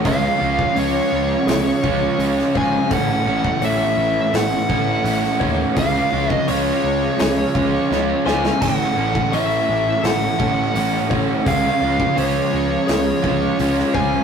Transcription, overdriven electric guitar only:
0.04 C#3 G#3 C#4 F4
0.39 G#3 C#4 F4
0.75 C#3 G#3 C#4 F4
1.83 G#3 C#4 F4
2.19 C#3 G#3 C#4 F4
2.54 G#3 C#4 F4
2.90 A2 E3 A3 C#4 E4
3.26 A3 C#4 E4
3.62 E3 A3 C#4 E4
4.69 A3 C#4 E4
5.05 E3 A3 C#4 E4
5.41 A3 C#4 E4
5.76 C#3 G#3 C#4 F4
6.12 G#3 C#4 F4
6.48 C#3 G#3 C#4 F4
7.54 G#3 C#4 F4
7.89 C#3 G#3 C#4 F4
8.25 G#3 C#4 F4
8.61 A2 E3 A3 C#4 E4
8.96 A3 C#4 E4
9.32 E3 A3 C#4 E4
10.39 A3 C#4 E4
10.74 E3 A3 C#4 E4
11.10 A3 C#4 E4
11.45 C#3 G#3 C#4 F4
11.81 G#3 C#4 F4
12.16 C#3 G#3 C#4 F4
13.22 G#3 C#4 F4
13.59 C#3 G#3 C#4 F4
13.94 G#3 C#4 F4

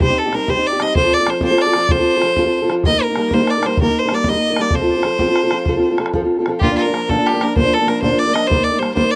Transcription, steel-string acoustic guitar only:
0.01 C3 G3 C4 D#4 G4
0.09 C4 D#4 G4
0.26 C4 D#4 G4
0.33 G3 C4 D#4 G4
0.47 C3 G3 C4 D#4 G4
0.57 C4 D#4 G4
0.73 C4 D#4 G4
0.80 G3 C4 D#4 G4
0.95 F3 C4 F4 A4
1.04 C4 F4 A4
1.21 C4 F4
1.27 F3 C4 F4 A4
1.43 F3 C4 F4 A4
1.50 C4 F4 A4
1.67 C4 F4 A4
1.75 F3 C4 F4
1.90 F3 C4 F4 A4
1.99 C4 F4 A4
2.16 C4 F4 A4
2.23 F3 C4 F4 A4
2.38 F3 C4 F4 A4
2.47 C4 F4
2.62 C4 F4 A4
2.69 F3 C4 F4 A4
2.85 D#3 G3 A#3 D#4 A#4
2.92 A#3 D#4 A#4
3.10 A#3 D#4
3.17 G3 A#3 D#4 A#4
3.32 D#3 G3 A#3 D#4 A#4
3.42 A#3 D#4 A#4
3.58 A#3 D#4 A#4
3.65 G3 A#3 D#4 A#4
3.81 D#3 G3 A#3 D#4 A#4
3.90 A#3 D#4
4.05 A#3 D#4 A#4
4.12 G3 A#3 D#4 A#4
4.27 D#3 G3 A#3 D#4 A#4
4.34 A#3 D#4 A#4
4.50 A#3 D#4 A#4
4.59 G3 A#3 D#4 A#4
4.73 F3 C4 F4 A4
4.81 C4 F4 A4
4.97 C4 F4 A4
5.04 F3 C4 F4 A4
5.19 F3 C4 F4 A4
5.27 C4 F4 A4
5.43 C4 F4 A4
5.51 F3 C4 F4 A4
5.67 F3 C4 F4 A4
5.76 C4 F4 A4
5.91 C4 F4 A4
5.98 F3 C4 F4 A4
6.14 F3 C4 F4 A4
6.23 C4 F4 A4
6.39 C4 F4 A4
6.47 F3 C4 F4 A4
6.62 A#2 D3 F3 A#3 D4 A#4
6.70 F3 A#3 D4 A#4
6.86 F3 A#3 D4 A#4
6.93 F3 A#3 D4 A#4
7.09 A#2 D3 F3 A#3 D4 A#4
7.17 F3 A#3 D4 A#4
7.33 F3 A#3 D4 A#4
7.40 F3 A#3 D4 A#4
7.55 A#2 D3 F3 A#3 D4 A#4
7.63 F3 A#3 D4 A#4
7.78 F3 A#3 D4 A#4
7.87 F3 A#3 D4 A#4
8.02 A#2 D3 F3 A#3 D4 A#4
8.10 F3 A#3 D4 A#4
8.27 F3 A#3 D4 A#4
8.34 F3 A#3 D4 A#4
8.49 D#3 G3 A#3 D#4 A#4
8.57 A#3 D#4 A#4
8.72 A#3 D#4 A#4
8.79 G3 A#3 D#4 A#4
8.95 D#3 G3 A#3 D#4 A#4
9.03 A#3 D#4 A#4

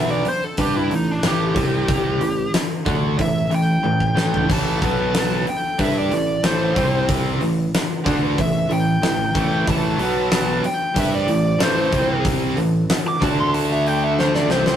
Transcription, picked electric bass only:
Already playing: B1
0.26 muted picked electric bass stroke
0.58 G2
0.91 A1
1.23 A1
1.56 C2
2.21 A1
2.86 D2
3.19 A1
3.51 A1
3.84 A1
4.17 A1
4.50 A1
4.82 B1
5.47 muted picked electric bass stroke
5.80 G2
6.12 A1
6.44 A1
6.76 C2
7.41 A1
8.06 D2
8.39 A1
8.70 A1
9.02 A1
9.35 A1
9.68 A1
9.98 B1
10.64 muted picked electric bass stroke
10.96 G2
11.27 A1
11.59 A1
11.93 C2
12.57 A1
13.22 D2
14.50 C2

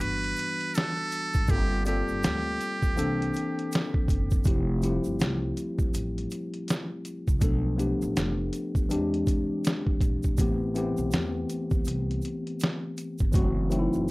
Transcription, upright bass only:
0.01 G1
1.35 G#1
1.50 G1
2.10 G1
2.25 D2
2.99 C2
4.09 F#1
4.46 F1
5.06 G1
5.20 C2
5.94 A1
7.28 C2
7.42 B1
8.02 A1
8.17 F1
8.91 E2
10.01 A#1
10.39 A1
10.98 B1
11.13 E2
11.87 C2
13.21 G1
13.35 F#1
13.95 F#1

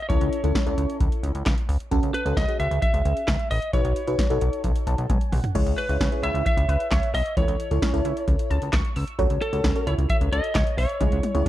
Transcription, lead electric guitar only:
0.02 D#5
0.09 C#5
2.14 B4
2.37 D#5
2.60 E5
2.82 E5
3.51 D#5
3.73 C#5
5.78 B4
6.24 E5
6.46 E5
7.15 D#5
7.37 C#5
9.42 A4
9.87 C#5
10.10 E5
10.33 D#5
10.78 C#5

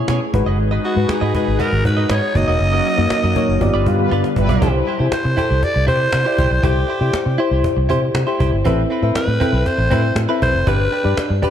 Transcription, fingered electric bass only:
0.09 B2
0.34 G#1
0.46 F#1
0.59 G#1
0.96 G#2
1.09 muted fingered electric bass stroke
1.22 G#2
1.48 G#1
1.73 G#1
1.85 G#2
2.10 G#2
2.35 F#1
2.48 E1
2.60 F#1
2.98 F#2
3.11 muted fingered electric bass stroke
3.24 F#2
3.49 F#1
3.61 G1
3.74 G1
3.86 G2
4.12 G2
4.37 G1
4.49 B1
4.62 C2
5.00 C3
5.12 muted fingered electric bass stroke
5.25 C3
5.51 C2
5.76 C2
5.88 C3
6.14 C3
6.38 C2
6.51 B1
6.63 C2
7.01 C3
7.14 muted fingered electric bass stroke
7.26 C3
7.51 C2
7.77 C2
7.90 C3
8.15 C3
8.40 C2
8.52 G1
8.65 A1
9.02 A2
9.15 muted fingered electric bass stroke
9.27 A2
9.53 B1
9.78 A1
9.91 A2
10.15 A2
10.42 B1
10.54 F1
10.67 G1
11.05 G2
11.18 muted fingered electric bass stroke
11.30 G2

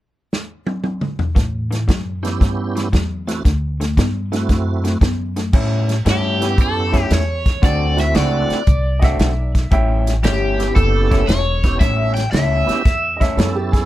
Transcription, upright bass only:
1.36 A2
1.88 F#2
2.41 G2
2.94 E2
3.45 D2
3.97 G2
4.49 F#2
5.01 F#2
5.53 A2
6.06 G2
6.59 F#2
7.11 E2
7.63 D2
8.15 C#2
8.50 muted upright bass stroke
8.68 C2
9.19 B1
9.72 A1
10.23 G1
10.76 F#1
11.28 E1
11.81 A1
12.32 C#2
12.69 muted upright bass stroke
12.85 E2
13.37 F#2

